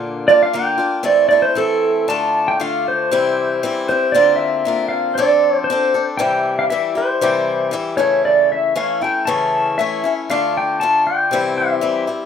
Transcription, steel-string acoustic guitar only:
\new Staff \with { instrumentName = "Steel-string acoustic guitar" } { \time 4/4 \key d \minor \tempo 4 = 117 <bes, d bes d' f'>8 <bes d' f'>8 <d bes d' f'>8 <bes d' f'>8 <a, e a c' e'>8 <a c' e'>8 <e a c' e'>4 | <d a d' f'>4 <d a d' f'>4 <c e g c' e'>4 <e g c' e'>8 <g c' e'>8 | <d bes c' f'>4 <d bes c' f'>4 <f c' d' a'>4 <f c' d' a'>8 <c' d' a'>8 | <c e g e' g'>4 <e g e' g'>8 <g e' g'>8 <c e g e' g'>4 <e g e' g'>8 <cis e a cis' e'>8~ |
<cis e a cis' e'>4 <e a cis' e'>8 <a cis' e'>8 <cis e a cis' e'>4 <e a cis' e'>8 <a cis' e'>8 | <d a d' f'>4 <d a d' f'>4 <c e g c' e'>4 <e g c' e'>8 <g c' e'>8 | }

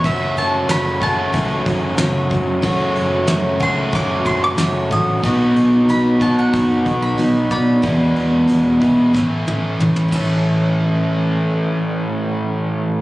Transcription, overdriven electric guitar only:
\new Staff \with { instrumentName = "Overdriven electric guitar" } { \clef bass \time 4/4 \key a \major \tempo 4 = 92 <fis, cis fis a cis' fis'>4. <fis, cis fis a cis' fis'>2~ <fis, cis fis a cis' fis'>8 | <fis, cis fis a cis' fis'>4. <fis, cis fis a cis' fis'>2~ <fis, cis fis a cis' fis'>8 | <b, fis b dis' fis'>4. <b, fis b dis' fis'>2~ <b, fis b dis' fis'>8 | <e, b, e gis b e'>4. <e, b, e gis b e'>8 <a, e a cis' e'>4. <a, e a cis' a'>8~ |
<a, e a cis' a'>1 | }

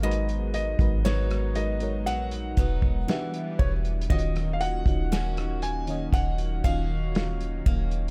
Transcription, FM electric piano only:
\new Staff \with { instrumentName = "FM electric piano" } { \time 4/4 \key ees \minor \tempo 4 = 59 <aes ees' ges' bes' ces''>8. <aes ees' ges' bes' ces''>8. <aes ees' ges' bes' ces''>16 <aes ees' ges' bes' des''>4~ <aes ees' ges' bes' des''>16 <e d' ges' g' e''>4 | <ees des' f' ges' ees''>8. <ees des' ees' ges' ges''>4 <ees des' ees' ges' ees''>8. <ees des' f' ges' ees''>4~ <ees des' f' ges' ees''>16 r16 | }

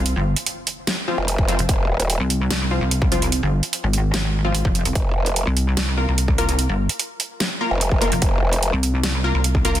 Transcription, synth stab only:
\new Staff \with { instrumentName = "Synth stab" } { \time 4/4 \key f \minor \tempo 4 = 147 r2 r8 <f c' f'>8 r8 <f c' f'>16 r16 | r2 r8 <f c' f'>8 r8 <f c' f'>16 r16 | r2 r8. <f c' f'>4~ <f c' f'>16 | r2 r8 <bes f' bes'>8 r8 <bes f' bes'>16 r16 |
r2 r8 <bes f' bes'>8 r8 <bes f' bes'>16 r16 | r2 r8 <bes f' bes'>8 r8 <bes f' bes'>16 r16 | }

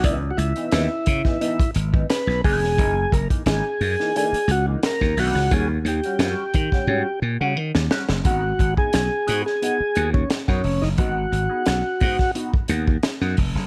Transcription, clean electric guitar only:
\new Staff \with { instrumentName = "Clean electric guitar" } { \time 4/4 \key cis \mixolydian \tempo 4 = 88 <e b dis'>16 r8 <e b dis'>16 <e b dis'>16 r8 <e b dis'>16 <e b dis'>16 r8 <e b dis'>16 r8 <e b dis'>16 r16 | <e ais dis'>16 r8 <e ais dis'>16 <e ais dis'>16 r8 <e ais dis'>16 <e ais dis'>16 r8 <e ais dis'>16 r8 <e ais dis'>16 r16 | <g cis' fis'>16 r8 <g cis' fis'>16 <g cis' fis'>16 r8 <g cis' fis'>16 <g cis' fis'>16 r8 <g cis' fis'>16 r8 <g cis' fis'>16 r16 | <b dis' fis'>16 r8 <b dis' gis'>16 r8 <b dis' fis'>16 r16 <b dis' fis'>16 r16 <b dis' fis'>16 r8 <b dis' fis'>16 r8 |
<b dis' fis'>16 r8 <b dis' gis'>16 r8 <b dis' fis'>16 r16 <b dis' fis'>16 r16 <b dis' fis'>16 r8 <b dis' fis'>16 r8 | }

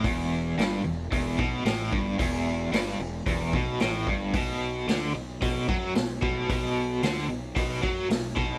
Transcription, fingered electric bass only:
\new Staff \with { instrumentName = "Fingered electric bass" } { \clef bass \time 4/4 \key b \dorian \tempo 4 = 112 e,,4 g,,8 e,,8 e,,8 b,,8 a,,8 g,,8 | e,,4 g,,8 e,,8 e,,8 b,,8 a,,8 g,,8 | b,,4 d,8 b,,8 b,,8 fis,8 b,,8 b,,8 | b,,4 d,8 b,,8 b,,8 fis,8 b,,8 b,,8 | }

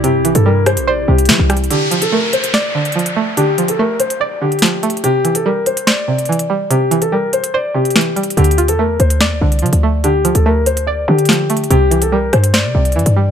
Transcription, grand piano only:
\new Staff \with { instrumentName = "Grand piano" } { \time 4/4 \key d \minor \tempo 4 = 144 g'8. a'16 bes'8 c''8 d''8 g'4. | g'8. a'16 bes'8 c''8 d''8 d''4. | g'8. a'16 bes'8 c''8 d''8 g'4. | g'8. a'16 bes'8 c''8 d''8 d''4. |
g'8. a'16 bes'8 c''8 d''8 g'4. | g'8. a'16 bes'8 c''8 d''8 d''4. | g'8. a'16 bes'8 c''8 d''8 g'4. | g'8. a'16 bes'8 c''8 d''8 d''4. | }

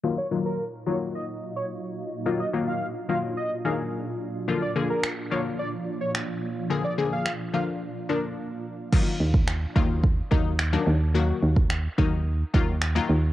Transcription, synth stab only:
\new Staff \with { instrumentName = "Synth stab" } { \clef bass \time 4/4 \key ees \minor \tempo 4 = 108 <ees ges bes f'>16 r16 <ees ges bes f'>8 r8 <ees ges bes f'>4 r4. | <ees ges bes f'>16 r16 <ees ges bes f'>8 r8 <ees ges bes f'>8 r8 <ees ges bes aes'>8. r8. | <d f bes f'>16 r16 <d f bes aes'>8 r8 <d f bes f'>4 r4. | <d f bes aes'>16 r16 <d f bes aes'>8 r8 <d f bes f'>8 r8 <d f bes d'>8. r8. |
<ees ges bes f'>8. r8. <ees ges bes f'>8 r8 <ees ges bes ees'>8 r16 <ees ges bes d'>8 r16 | <ees ges bes ges'>8. r8. <ees ges bes ees'>8 r8 <ees ges bes f'>8 r16 <ees ges bes f'>8 r16 | }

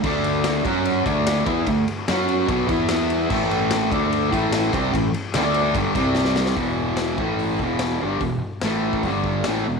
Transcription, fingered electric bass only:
\new Staff \with { instrumentName = "Fingered electric bass" } { \clef bass \time 4/4 \key d \lydian \tempo 4 = 147 d,4. fis,4 d,4 e,8 | d,8 r8 fis,4 b,,8 e,4. | a,,4. d,4 a,,4 c,8 | a,,8 r8 d,4 g,,8 c,4. |
e,,4. a,,4 e,,4 g,,8 | e,,8 r8 a,,4 g,,4 a,,8 e,,8 | }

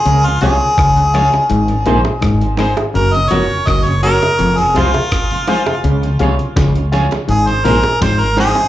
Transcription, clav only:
\new Staff \with { instrumentName = "Clav" } { \clef bass \time 4/4 \key des \major \tempo 4 = 83 des8 c16 r16 des8 r8 aes,8 bes,16 r16 aes,8 r8 | ges,8 f,16 r16 ges,8 r8 f,8 c16 r4 r16 | des8 c16 r16 des8 r8 aes,8 bes,16 r16 aes,8 r8 | }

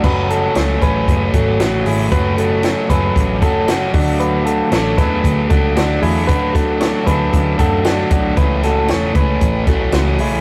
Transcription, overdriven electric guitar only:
\new Staff \with { instrumentName = "Overdriven electric guitar" } { \time 4/4 \key fis \minor \tempo 4 = 115 <fis, cis fis a cis'>4 <cis fis a cis'>8 <fis a cis'>4 <fis a cis'>8 <cis fis a cis'>4 | <fis, cis fis a cis'>4 <cis fis a cis'>8 <fis a cis'>4 <fis a cis'>8 <cis fis a cis'>8 <d fis a d'>8~ | <d fis a d'>4 <d fis a d'>8 <fis a d'>4 <fis a d'>8 <d fis a d'>4 | <d fis a d'>4 <d fis a d'>8 <fis a d'>4 <fis a d'>8 <d fis a d'>4 |
<cis e a cis'>4 <cis e a cis'>8 <e a cis'>4 <e a cis'>8 <cis e a cis'>4 | }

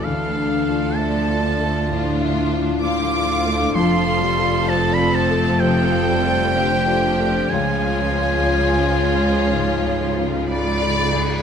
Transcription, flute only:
\new Staff \with { instrumentName = "Flute" } { \time 4/4 \key cis \phrygian \tempo 4 = 64 a'4 d''4. r8 f''4 | f''4 c''16 d''16 c''8 c''2 | cis''2. b''4 | }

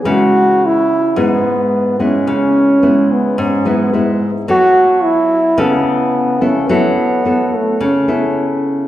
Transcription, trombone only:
\new Staff \with { instrumentName = "Trombone" } { \time 4/4 \key cis \phrygian \tempo 4 = 108 fis'4 e'4 b4. cis'8 | cis'4. b8 cis'8 b4 r8 | fis'4 e'4 b4. cis'8 | b4. a8 cis'8 cis'4 r8 | }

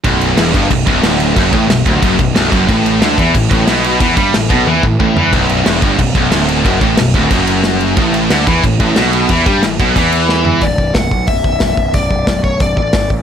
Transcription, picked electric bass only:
\new Staff \with { instrumentName = "Picked electric bass" } { \clef bass \time 4/4 \key b \minor \tempo 4 = 181 b,,,4 e,,8 g,,8 b,,,8 b,,,8 d,,4 | fis,,8 a,,8 b,,,8 d,,8 fis,,8 b,,,8 b,,,8 fis,,8 | a,,4 d,8 e,8 a,,8 a,,8 b,,4 | e,8 g,8 a,,8 b,,8 e,8 a,,8 a,,8 e,8 |
b,,,4 e,,8 g,,8 b,,,8 b,,,8 d,,4 | fis,,8 a,,8 b,,,8 d,,8 fis,,2 | a,,4 d,8 e,8 a,,8 a,,8 b,,4 | e,8 g,8 a,,8 b,,8 e,2 |
b,,,8 b,,,8 b,,,8 b,,8 b,,,8 b,,,8 b,,,8 b,,,8 | b,,,8 b,,,8 b,,,4 b,,,8 a,,8 gis,,8 a,,8 | }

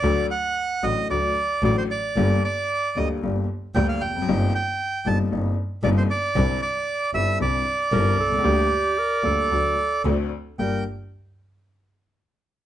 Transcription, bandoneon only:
\new Staff \with { instrumentName = "Bandoneon" } { \time 4/4 \key g \minor \tempo 4 = 114 d''8 fis''4 ees''8 d''4 d''16 c''16 d''8~ | d''8 d''4 ees''8 r4 g''16 f''16 g''8~ | g''8 g''4 a''8 r4 d''16 c''16 d''8~ | d''8 d''4 e''8 d''2~ |
d''2. r4 | g''8 r2. r8 | }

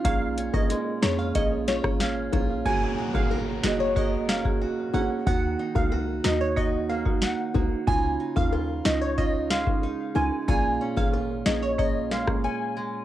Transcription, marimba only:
\new Staff \with { instrumentName = "Marimba" } { \time 4/4 \key ges \lydian \tempo 4 = 92 <bes des' aes'>8. <bes des' aes'>8. <bes des' aes'>8 <bes des' aes'>16 r8 <bes des' aes'>16 r8 <bes des' aes'>16 r16 | <bes ges' aes'>8. <bes ges' aes'>8. <bes ges' aes'>8 <bes ges' aes'>16 r8 <bes ges' aes'>16 r8 <bes ges' aes'>16 r16 | <bes ees' ges'>8. <bes ees' ges'>8. <bes ees' ges'>8 <bes ees' ges'>16 r8 <bes ees' ges'>16 r8 <bes ees' ges'>16 r16 | <des' ees' f'>8. <des' ees' f'>8. <des' ees' f'>8 <des' ees' f'>16 r8 <des' ees' f'>16 r8 <des' ees' f'>16 r16 |
<bes des' aes'>8. <bes des' aes'>8. <bes des' aes'>8 <bes des' aes'>16 r8 <bes des' aes'>16 r4 | }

